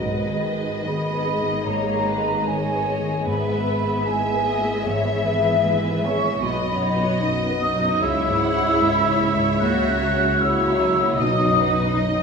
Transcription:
0.00 3.26 G#1 soft
0.00 1.63 G#2 soft
0.00 1.67 G#2 soft
0.00 0.83 D#3 soft
0.00 3.28 G#3 soft
0.00 0.86 D#4 soft
0.00 3.24 G#4 soft
0.00 0.85 B4 soft
0.00 3.28 D#5 soft
0.00 0.83 D#5 medium
0.29 0.76 D#3 soft
0.29 1.93 D#3 soft
0.60 1.04 G#4 soft
0.86 1.30 D#3 soft
0.86 1.67 B3 soft
0.86 1.40 D#4 soft
0.86 1.67 D#5 soft
0.86 1.67 B5 medium
1.15 2.73 G#4 soft
1.15 1.57 B4 soft
1.41 1.83 D#3 soft
1.41 2.46 D#4 soft
1.66 3.23 G#2 soft
1.66 3.27 G#2 soft
1.66 2.46 A#3 soft
1.66 2.07 C#5 soft
1.66 2.47 A#5 medium
1.94 3.31 D#3 soft
1.94 2.37 D#4 soft
2.08 2.48 B4 soft
2.21 3.80 B3 soft
2.21 2.63 G#4 soft
2.47 2.90 D#3 soft
2.47 3.27 G#3 soft
2.47 3.00 D#4 soft
2.47 3.28 C#5 soft
2.47 3.27 G#5 medium
2.73 4.33 G#4 soft
2.73 3.16 B4 soft
3.00 3.27 D#3 soft
3.00 3.31 D#4 soft
3.27 6.39 G#1 soft
3.27 4.82 G#2 soft
3.27 4.86 G#2 soft
3.27 4.06 B3 soft
3.27 6.39 B3 soft
3.27 6.39 G#4 soft
3.27 4.06 B4 soft
3.27 6.43 E5 soft
3.27 4.06 B5 medium
3.54 3.97 G#3 soft
3.54 5.12 G#3 soft
3.80 5.38 B3 soft
3.80 4.23 G#4 soft
4.07 4.49 G#3 soft
4.07 4.86 G#3 medium
4.07 4.59 E4 soft
4.07 4.47 E5 soft
4.07 4.86 G#5 medium
4.34 5.91 G#4 soft
4.34 4.76 B4 soft
4.47 4.86 D#5 soft
4.59 5.01 G#3 soft
4.59 5.64 E4 soft
4.85 6.38 G#2 soft
4.85 6.46 G#2 soft
4.85 6.04 E3 medium
4.85 5.26 C#5 soft
4.85 6.04 E5 medium
5.12 6.46 G#3 soft
5.12 5.54 E4 soft
5.25 5.64 B4 soft
5.38 6.93 B3 soft
5.38 5.80 G#4 soft
5.65 6.07 G#3 soft
5.65 6.16 E4 soft
5.65 6.03 B4 soft
5.92 6.46 G#4 soft
5.92 6.33 B4 soft
6.04 6.43 C#4 medium
6.04 6.43 E5 medium
6.04 6.43 C#6 medium
6.17 6.43 G#3 soft
6.17 6.46 E4 soft
6.42 7.97 B1 soft
6.42 8.04 B2 medium
6.42 6.61 F#3 soft
6.42 6.61 B3 soft
6.42 7.59 B3 soft
6.42 6.81 D#5 medium
6.42 7.97 D#5 medium
6.42 7.31 B5 medium
6.62 6.82 B3 soft
6.68 7.11 F#2 soft
6.68 8.04 F#3 soft
6.81 7.01 D#4 soft
6.81 7.21 C#5 medium
6.94 8.04 B3 soft
6.94 7.37 F#4 soft
7.01 7.21 F#4 soft
7.21 7.64 F#2 soft
7.21 7.73 D#4 soft
7.21 7.41 D#4 soft
7.21 8.01 D#5 medium
7.41 7.61 B3 soft
7.47 8.04 F#4 soft
7.47 7.91 B4 soft
7.60 7.81 F#3 medium
7.60 8.00 D#4 medium
7.60 8.00 D#6 medium
7.74 8.02 F#2 soft
7.74 8.04 D#4 soft
7.81 8.01 B3 soft
8.01 11.19 C#2 soft
8.01 9.57 C#2 soft
8.01 9.59 C#3 soft
8.01 9.19 G#3 soft
8.01 9.61 E4 medium
8.01 11.19 C#5 soft
8.01 8.41 E5 medium
8.01 9.61 E6 medium
8.21 8.41 C#4 soft
8.27 8.71 G#2 soft
8.27 9.64 G#3 soft
8.41 8.60 E4 soft
8.41 8.81 F#5 medium
8.53 9.05 C#4 soft
8.53 8.97 E4 soft
8.60 8.80 G#4 soft
8.80 9.24 G#2 soft
8.80 9.00 E4 soft
8.80 9.32 G#4 soft
8.80 10.41 E5 medium
9.01 9.21 C#4 soft
9.06 10.12 C#4 soft
9.06 9.51 G#4 soft
9.20 9.40 G#3 soft
9.33 9.61 G#2 soft
9.33 9.63 G#4 soft
9.40 9.61 C#4 soft
9.60 11.16 C#2 soft
9.60 11.22 C#3 medium
9.60 9.79 F#3 soft
9.60 9.80 A#3 soft
9.60 10.41 F#4 medium
9.60 10.39 F#6 medium
9.81 10.01 A#3 soft
9.87 10.30 C#3 soft
9.87 11.22 A#3 soft
10.01 10.21 C#4 soft
10.13 11.22 C#4 soft
10.13 10.56 C#4 soft
10.20 10.40 F#4 soft
10.40 10.83 C#3 soft
10.40 10.60 C#4 soft
10.40 11.18 E4 medium
10.40 10.91 F#4 soft
10.40 11.17 C#5 medium
10.40 11.19 E6 medium
10.60 10.80 A#3 soft
10.66 11.09 F#4 soft
10.66 11.22 A#4 soft
10.79 10.99 F#3 soft
10.92 11.20 C#3 soft
10.92 12.23 F#4 soft
10.99 11.19 A#3 soft
11.18 12.23 B1 medium
11.18 12.23 B1 soft
11.18 12.23 B2 soft
11.18 11.38 F#3 soft
11.18 11.38 B3 soft
11.18 12.23 D#4 medium
11.18 12.23 D#5 soft
11.18 11.58 D#5 soft
11.18 12.23 D#6 medium
11.39 11.59 B3 soft
11.45 11.88 F#2 soft
11.45 12.23 F#3 soft
11.58 11.79 D#4 soft
11.58 11.99 B4 soft
11.71 12.15 D#4 soft
11.78 11.99 F#4 soft
11.98 12.23 F#2 soft
11.98 12.23 D#4 soft
11.98 12.19 D#4 soft
11.98 12.23 D#5 soft
12.20 12.23 B3 soft

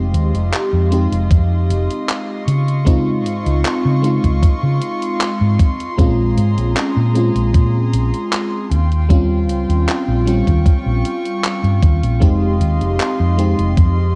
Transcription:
0.00 0.15 F1 medium
0.00 0.87 G#3 medium
0.00 0.87 C4 medium
0.00 0.88 D#4 medium
0.00 2.45 F4 medium
0.00 0.88 G4 loud
0.00 5.94 D#5 medium
0.00 10.23 C6 medium
0.14 0.31 D#2 loud
0.14 closed hi-hat medium
0.34 0.50 F1 medium
0.34 closed hi-hat medium
0.53 clap loud
0.53 closed hi-hat medium
0.73 1.06 F2 medium
0.91 2.45 G#3 medium
0.91 2.45 C4 medium
0.91 2.46 D#4 medium
0.91 2.46 G4 medium
0.91 closed hi-hat medium
1.12 1.28 F1 medium
1.12 closed hi-hat medium
1.31 1.71 F2 medium
1.31 kick loud
1.31 closed hi-hat medium
1.70 1.87 F1 medium
1.70 closed hi-hat medium
1.90 closed hi-hat medium
2.09 clap loud
2.09 closed hi-hat medium
2.47 3.26 C#3 medium
2.47 5.95 F4 medium
2.47 5.95 C#6 medium
2.47 closed hi-hat medium
2.68 closed hi-hat soft
2.85 3.98 G#3 medium
2.85 3.99 C4 medium
2.85 3.99 D#4 medium
2.85 4.00 F4 medium
2.85 kick loud
2.85 closed hi-hat medium
3.26 3.43 G#2 medium
3.26 closed hi-hat medium
3.46 3.62 C#2 medium
3.46 closed hi-hat medium
3.65 clap loud
3.65 closed hi-hat medium
3.85 4.18 C#3 medium
4.02 5.93 G#3 medium
4.02 5.94 C4 medium
4.02 5.94 D#4 medium
4.02 5.95 F4 medium
4.02 closed hi-hat medium
4.24 4.40 C#2 loud
4.24 kick medium
4.24 closed hi-hat medium
4.43 kick loud
4.43 closed hi-hat medium
4.63 4.79 C#3 medium
4.82 closed hi-hat medium
5.02 closed hi-hat medium
5.21 clap loud
5.21 closed hi-hat medium
5.41 5.57 G#2 loud
5.59 kick loud
5.59 closed hi-hat medium
5.80 closed hi-hat medium
5.98 6.39 A#1 medium
5.98 7.10 G#3 medium
5.98 7.11 C4 medium
5.98 7.11 C#4 medium
5.98 7.12 F4 loud
5.98 8.68 G#4 medium
5.98 8.68 A#5 medium
5.98 kick loud
5.98 closed hi-hat medium
6.37 6.54 G#2 loud
6.37 closed hi-hat medium
6.58 6.73 A#1 medium
6.58 closed hi-hat medium
6.76 clap loud
6.76 closed hi-hat medium
6.97 7.29 A#2 medium
7.14 8.68 G#3 medium
7.14 8.69 C4 medium
7.14 8.69 C#4 medium
7.14 8.70 F4 medium
7.14 closed hi-hat medium
7.35 7.51 A#1 loud
7.35 closed hi-hat medium
7.54 7.95 A#2 medium
7.54 kick loud
7.54 closed hi-hat medium
7.93 8.10 A#1 medium
7.93 closed hi-hat medium
8.14 closed hi-hat medium
8.32 clap loud
8.32 closed hi-hat medium
8.71 9.49 D#2 medium
8.71 14.15 F4 medium
8.71 12.18 G5 medium
8.71 closed hi-hat medium
8.92 closed hi-hat medium
9.09 10.22 G3 medium
9.09 10.22 C4 medium
9.09 10.23 C#4 medium
9.09 10.23 F4 medium
9.09 kick loud
9.09 closed hi-hat medium
9.49 9.66 C#2 medium
9.49 closed hi-hat medium
9.69 9.85 D#2 medium
9.69 closed hi-hat soft
9.88 clap loud
9.88 closed hi-hat medium
10.08 10.41 A#1 medium
10.26 12.17 G3 medium
10.26 12.17 C4 medium
10.26 12.18 C#4 medium
10.26 12.18 F4 medium
10.26 12.20 C#6 medium
10.26 closed hi-hat medium
10.47 10.63 D#2 medium
10.47 kick medium
10.47 closed hi-hat medium
10.66 kick loud
10.66 closed hi-hat medium
10.86 11.02 A#1 medium
11.05 closed hi-hat medium
11.25 closed hi-hat medium
11.44 clap loud
11.44 closed hi-hat medium
11.64 11.80 G2 medium
11.64 closed hi-hat soft
11.82 12.00 D#2 medium
11.82 kick loud
11.82 closed hi-hat medium
12.03 12.19 A#1 medium
12.03 closed hi-hat medium
12.20 12.62 F1 medium
12.20 13.33 G#3 medium
12.20 13.34 C4 medium
12.20 13.34 D#4 medium
12.20 13.35 G4 medium
12.20 14.15 D#5 medium
12.20 14.15 C6 medium
12.20 kick loud
12.20 closed hi-hat medium
12.60 12.78 D#2 medium
12.60 closed hi-hat medium
12.81 12.97 F1 medium
12.81 closed hi-hat soft
13.00 clap loud
13.00 closed hi-hat medium
13.20 13.53 F2 medium
13.37 14.15 G#3 medium
13.37 14.15 C4 medium
13.37 14.15 D#4 medium
13.37 14.15 G4 medium
13.37 closed hi-hat medium
13.58 13.74 F1 medium
13.58 closed hi-hat soft
13.77 14.15 F2 medium
13.77 kick loud
13.77 closed hi-hat medium

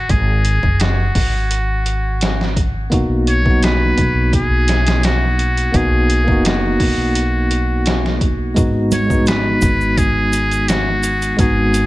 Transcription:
0.00 0.12 F#4 medium
0.09 0.60 G#1 medium
0.09 0.82 G#4 medium
0.09 kick loud
0.09 closed hi-hat medium
0.45 closed hi-hat medium
0.63 1.12 F#1 medium
0.63 kick medium
0.80 2.57 F#4 medium
0.80 snare loud
0.80 closed hi-hat medium
1.15 2.89 G#1 medium
1.15 kick medium
1.15 open hi-hat medium
1.51 closed hi-hat medium
1.86 closed hi-hat medium
2.21 snare loud
2.21 closed hi-hat medium
2.41 snare soft
2.56 kick medium
2.56 closed hi-hat medium
2.90 3.94 B1 medium
2.90 3.40 A#3 medium
2.90 3.41 B3 medium
2.90 3.41 D#4 medium
2.90 3.42 F#4 medium
2.90 kick loud
2.90 closed hi-hat medium
3.27 3.65 C#5 medium
3.27 closed hi-hat medium
3.42 5.68 F#3 medium
3.42 5.70 B3 medium
3.42 kick medium
3.47 5.71 D#4 medium
3.47 5.72 F#4 medium
3.63 4.33 B4 medium
3.63 snare loud
3.63 closed hi-hat medium
3.98 5.71 B1 medium
3.98 kick medium
3.98 closed hi-hat medium
4.33 5.07 G#4 medium
4.33 kick loud
4.33 closed hi-hat medium
4.68 snare medium
4.68 closed hi-hat medium
4.87 snare loud
4.87 closed hi-hat medium
5.03 5.78 F#4 medium
5.03 snare loud
5.03 closed hi-hat medium
5.39 closed hi-hat medium
5.57 closed hi-hat soft
5.72 6.24 B1 medium
5.72 6.22 A#3 medium
5.72 6.23 B3 medium
5.72 6.24 D#4 medium
5.72 6.24 F#4 medium
5.72 kick loud
5.72 closed hi-hat medium
5.76 6.46 G#4 loud
6.10 closed hi-hat medium
6.24 8.50 A#3 medium
6.24 8.52 B3 medium
6.24 kick medium
6.28 6.77 F#1 medium
6.28 8.53 D#4 medium
6.28 8.54 F#4 medium
6.45 8.18 F#4 medium
6.45 snare loud
6.45 closed hi-hat medium
6.80 8.53 B1 medium
6.80 kick medium
6.80 open hi-hat medium
7.15 closed hi-hat medium
7.51 closed hi-hat medium
7.86 snare loud
7.86 closed hi-hat medium
8.06 snare soft
8.21 kick medium
8.21 closed hi-hat medium
8.54 9.59 G#1 medium
8.54 9.05 G#3 medium
8.54 9.06 B3 medium
8.54 9.06 D#4 medium
8.54 kick loud
8.54 closed hi-hat medium
8.54 shaker soft
8.58 9.07 F#4 medium
8.91 9.29 C#5 medium
8.91 closed hi-hat medium
8.91 low conga medium
8.91 shaker medium
9.06 11.33 G#3 medium
9.06 11.34 B3 medium
9.06 kick medium
9.11 11.35 D#4 medium
9.11 11.37 F#4 medium
9.11 shaker soft
9.26 10.00 B4 medium
9.26 snare loud
9.26 closed hi-hat medium
9.26 shaker soft
9.62 11.35 G#1 medium
9.62 kick medium
9.62 closed hi-hat medium
9.62 shaker medium
9.81 shaker soft
9.97 10.70 G#4 loud
9.97 kick loud
9.97 closed hi-hat medium
9.97 shaker soft
10.33 closed hi-hat medium
10.33 shaker medium
10.51 closed hi-hat soft
10.51 shaker medium
10.68 11.39 F#4 medium
10.68 snare loud
10.68 closed hi-hat medium
10.68 shaker soft
11.03 closed hi-hat medium
11.03 shaker loud
11.22 closed hi-hat soft
11.22 shaker soft
11.37 11.86 G#1 medium
11.37 11.86 G#3 medium
11.37 11.86 B3 medium
11.37 11.86 D#4 medium
11.37 11.86 G#4 medium
11.37 kick loud
11.37 closed hi-hat medium
11.37 shaker soft
11.41 11.86 F#4 medium
11.74 closed hi-hat medium
11.74 shaker medium

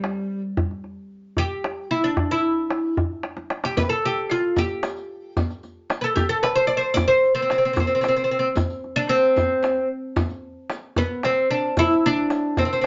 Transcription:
0.00 0.41 G3 medium
0.00 tombak tek medium
0.57 tombak dum medium
0.71 tombak ka soft
0.84 tombak ka soft
1.37 1.90 G4 loud
1.37 tombak dum medium
1.64 tombak tek medium
1.91 2.04 E4 medium
2.04 2.31 D4 medium
2.17 tombak dum medium
2.31 3.00 E4 medium
2.70 tombak tek medium
2.97 tombak dum medium
3.23 tombak tek medium
3.37 tombak ka medium
3.50 tombak tek medium
3.64 3.77 G4 medium
3.64 tombak ka medium
3.77 3.89 B4 medium
3.77 riq medium
3.77 tombak dum medium
3.89 4.04 A4 medium
3.89 riq soft
3.89 tombak ka soft
4.04 4.32 G4 medium
4.04 tombak ka soft
4.30 4.58 F4 medium
4.30 riq soft
4.56 5.54 G4 medium
4.56 riq medium
4.56 tombak dum medium
4.83 riq soft
4.83 tombak tek medium
4.96 riq soft
5.37 riq medium
5.37 tombak dum medium
5.50 riq soft
5.50 tombak ka soft
5.63 riq soft
5.63 tombak ka soft
5.90 riq soft
5.90 tombak tek medium
6.01 6.15 A4 medium
6.01 6.04 B4 medium
6.16 6.29 G4 medium
6.16 riq medium
6.16 tombak dum medium
6.29 6.43 A4 medium
6.43 6.55 B4 medium
6.43 riq soft
6.43 tombak tek medium
6.55 6.67 C5 medium
6.55 riq soft
6.67 6.77 D5 medium
6.77 6.93 C5 medium
6.94 7.07 D5 loud
6.94 riq medium
6.94 tombak dum medium
7.08 7.34 C5 medium
7.08 riq soft
7.08 tombak ka soft
7.23 riq soft
7.23 tombak ka soft
7.35 7.41 C4 medium
7.42 7.50 C4 medium
7.50 7.57 C4 medium
7.50 riq soft
7.50 tombak tek medium
7.58 7.64 C4 soft
7.65 7.72 C4 medium
7.73 7.79 C4 soft
7.73 riq medium
7.73 tombak dum medium
7.80 7.86 C4 medium
7.87 7.94 C4 soft
7.95 8.00 C4 soft
8.01 8.07 C4 soft
8.01 riq soft
8.01 tombak tek medium
8.08 8.15 C4 medium
8.16 8.23 C4 soft
8.16 riq soft
8.24 8.30 C4 medium
8.31 8.38 C4 soft
8.39 8.47 C4 medium
8.55 riq medium
8.55 tombak dum medium
8.70 riq soft
8.84 tombak ka soft
8.96 9.10 D4 loud
9.09 9.88 C4 medium
9.09 riq soft
9.36 riq medium
9.36 tombak dum medium
9.63 riq soft
9.63 tombak tek medium
9.77 tombak ka soft
10.16 riq medium
10.16 tombak dum medium
10.30 riq soft
10.30 tombak ka soft
10.70 riq soft
10.70 tombak tek medium
10.96 11.25 B3 medium
10.96 riq medium
10.96 tombak dum medium
11.23 11.50 C4 medium
11.23 riq soft
11.23 tombak tek medium
11.51 11.78 D4 medium
11.77 12.05 E4 loud
11.77 riq medium
11.77 tombak dum medium
11.90 riq soft
12.06 12.58 D4 loud
12.30 riq soft
12.30 tombak tek medium
12.57 12.64 C4 medium
12.57 riq medium
12.57 tombak dum medium
12.65 12.71 C4 soft
12.73 12.79 C4 medium
12.81 12.87 C4 soft

